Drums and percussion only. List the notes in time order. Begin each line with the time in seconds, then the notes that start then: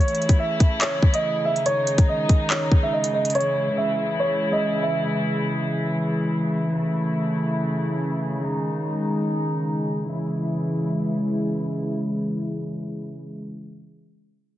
0.01 closed hi-hat
0.08 closed hi-hat
0.15 closed hi-hat
0.22 closed hi-hat
0.29 kick, closed hi-hat
0.60 kick, closed hi-hat
0.81 clap, closed hi-hat
1.03 kick
1.14 closed hi-hat
1.56 closed hi-hat
1.66 closed hi-hat
1.87 closed hi-hat
1.98 kick, closed hi-hat
2.29 kick, closed hi-hat
2.50 clap
2.72 kick
3.04 closed hi-hat
3.25 closed hi-hat
3.30 closed hi-hat
3.35 closed hi-hat
3.41 closed hi-hat